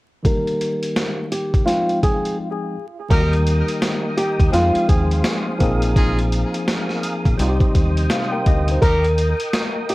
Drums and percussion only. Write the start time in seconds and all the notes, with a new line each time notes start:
0.25 kick, closed hi-hat
0.47 closed hi-hat
0.61 closed hi-hat
0.82 closed hi-hat
0.96 snare, closed hi-hat
1.32 closed hi-hat
1.54 kick, closed hi-hat
1.68 snare, closed hi-hat
1.90 closed hi-hat
2.03 kick, closed hi-hat
2.26 closed hi-hat
3.10 kick, closed hi-hat
3.33 closed hi-hat
3.46 closed hi-hat
3.68 closed hi-hat
3.82 snare, closed hi-hat
4.18 closed hi-hat
4.40 kick, closed hi-hat
4.53 snare, closed hi-hat
4.75 closed hi-hat
4.89 kick, closed hi-hat
5.11 closed hi-hat
5.24 snare, closed hi-hat
5.60 kick, closed hi-hat
5.82 closed hi-hat
5.96 kick, closed hi-hat
6.19 closed hi-hat
6.32 closed hi-hat
6.54 closed hi-hat
6.68 snare, closed hi-hat
6.89 snare
7.03 closed hi-hat
7.25 kick, closed hi-hat
7.39 closed hi-hat
7.60 kick, closed hi-hat
7.75 kick, closed hi-hat
7.97 closed hi-hat
8.10 snare, closed hi-hat
8.46 kick, closed hi-hat
8.68 closed hi-hat
8.82 kick, closed hi-hat
9.04 closed hi-hat
9.18 closed hi-hat
9.40 closed hi-hat
9.53 snare, closed hi-hat
9.89 closed hi-hat